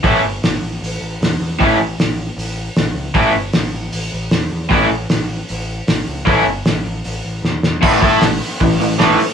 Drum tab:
CC |--------|--------|--------|--------|
HH |o-o-o-o-|o-o-o-o-|o-o-o-o-|o-o-o-o-|
SD |--o---o-|--o---o-|--o---o-|--o---o-|
BD |o-------|o-------|o-------|o-------|

CC |--------|x-------|
HH |o-o-o---|-ooooooo|
SD |--o---oo|--o---o-|
BD |o-------|oo--o---|